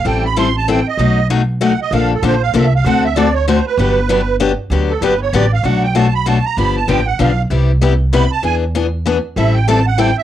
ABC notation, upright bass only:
X:1
M:3/4
L:1/8
Q:"Swing" 1/4=193
K:G
V:1 name="Upright bass" clef=bass
A,,,6 | B,,,6 | _B,,,2 B,,,2 C,,2 | D,,6 |
G,,,6 | D,,2 G,,,2 A,,,2 | B,,,6 | G,,,2 A,,,2 B,,,2 |
C,,6 | E,,6 | A,,,6 |]